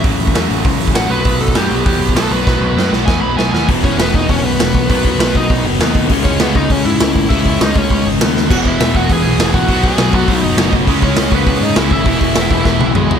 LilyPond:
<<
  \new Staff \with { instrumentName = "Lead electric guitar" } { \time 4/4 \key e \major \tempo 4 = 200 r2. fis''8 b'8~ | b'8 a'8 g'4 g'4 a'8 b'8~ | b'4. r8 gis''8 b''8 gis''8 gis''8 | r8 <cis' cis''>8 <b b'>8 <dis' dis''>8 <cis' cis''>8 <b b'>4. |
<b b'>4 <b b'>8 <dis' dis''>4 r4. | r8 <cis' cis''>8 <b b'>8 <dis' dis''>8 <cis' cis''>8 <e' e''>4. | <e' e''>4 <dis' dis''>8 <cis' cis''>4 r4. | <fis' fis''>8 <e' e''>4 <fis' fis''>8 <gis' gis''>4. <fis' fis''>8~ |
<fis' fis''>8 <gis' gis''>4 <fis' fis''>8 <dis' dis''>4. r8 | r8 <cis' cis''>4 <b b'>4 <dis' dis''>8 <e' e''>8 <e' e''>8~ | <e' e''>2. <gis gis'>4 | }
  \new Staff \with { instrumentName = "Distorted electric guitar" } { \clef bass \time 4/4 \key e \major <fis, cis fis>4 <fis, cis fis>8 <fis, cis fis>8 <fis, cis fis>4 <fis, cis fis>8 <b, fis b>8 | <b, fis b>4 <b, fis b>8 <b, fis b>8 <b, fis b>4 <b, fis b>8 <b, fis b>8 | <b, fis b>4 <b, fis b>8 <b, fis b>8 <b, fis b>4 <b, fis b>8 <b, fis b>8 | <e, b, e>1 |
<b, fis b>1 | <cis gis cis'>1 | <cis gis cis'>1 | <e, b, e>1 |
<b, fis b>1 | <cis gis cis'>1 | <e, b, e>1 | }
  \new Staff \with { instrumentName = "Distorted electric guitar" } { \clef bass \time 4/4 \key e \major <fis, cis fis>4 <fis, cis fis>8 <fis, cis fis>8 <fis, cis fis>4 <fis, cis fis>8 <b, fis b>8 | <b, fis b>4 <b, fis b>8 <b, fis b>8 <b, fis b>4 <b, fis b>8 <b, fis b>8 | <b, fis b>4 <b, fis b>8 <b, fis b>8 <b, fis b>4 <b, fis b>8 <b, fis b>8 | r1 |
r1 | r1 | r1 | <e, b, e>4. <e, b, e>4. <e, b, e>4 |
<b, fis b>4. <b, fis b>4. <b, fis b>4 | <cis gis cis'>4. <cis gis cis'>4. <cis gis cis'>4 | <e, b, e>4. <e, b, e>4. <e, b, e>4 | }
  \new Staff \with { instrumentName = "Distorted electric guitar" } { \clef bass \time 4/4 \key e \major r1 | r1 | r1 | <e, b, e>1 |
<b, fis b>1 | <cis gis cis'>1 | <cis gis cis'>1 | <e, b, e>1 |
<b, fis b>1 | <cis gis cis'>1 | <e, b, e>1 | }
  \new Staff \with { instrumentName = "Picked electric bass" } { \clef bass \time 4/4 \key e \major a,,8 a,,8 e,8 a,,8 cis,8 a,,8 a,,8 b,,8 | b,,8 b,,8 fis,8 b,,8 e,8 b,,8 b,,8 b,,8 | b,,8 b,,8 fis,8 b,,8 e,8 b,,8 b,,8 dis,8 | e,,4 e,,8 e,,8 e,,8 b,,8 e,,8 b,,8 |
b,,4 b,,8 b,,8 b,,8 fis,,8 dis,4 | cis,4 cis,8 cis,8 cis,8 gis,8 cis,8 gis,,8 | cis,4 cis,8 cis,8 cis,8 gis,,8 dis,4 | e,,4 e,,8 e,,8 e,,8 b,,8 e,,8 a,,8 |
b,,4 b,,8 b,,8 b,,8 fis,,8 fis,,4 | cis,4 cis,8 cis,8 cis,8 gis,8 cis,8 gis,,8 | e,,4 e,,8 e,,8 e,,8 b,,8 b,,4 | }
  \new DrumStaff \with { instrumentName = "Drums" } \drummode { \time 4/4 <hho bd>8 hho16 bd16 <hho sn>8 hho8 <hho bd>8 hho16 bd16 <hho sn>8 hho8 | <hho bd>8 hho16 bd16 <hho sn>8 hho8 <hho bd>8 hho16 bd16 <hho sn>8 hho8 | <bd sn>4 sn8 sn8 <bd sn>4 sn8 sn8 | <hho bd>8 bd8 <hho sn>8 bd8 <hho bd>4 <hho sn>8 bd8 |
<hho bd>8 bd8 <hho sn>8 bd8 <hho bd>4 <hho sn>8 bd8 | <hho bd>8 bd8 <hho sn>8 bd8 <hho bd>4 <hho sn>8 bd8 | <hho bd>8 bd8 <hho sn>8 bd8 <hho bd>4 <hho sn>8 sn8 | <cymc bd>8 bd8 <hho sn>8 bd8 <hho bd>4 <hho sn>8 bd8 |
<hho bd>8 bd8 <hho sn>8 bd8 <hho bd>4 <hho sn>8 bd8 | <hho bd>8 bd8 <hho sn>8 bd8 <hho bd>4 <hho sn>8 bd8 | <hho bd>8 bd8 <hho sn>8 bd8 <bd sn>8 tommh8 toml8 tomfh8 | }
>>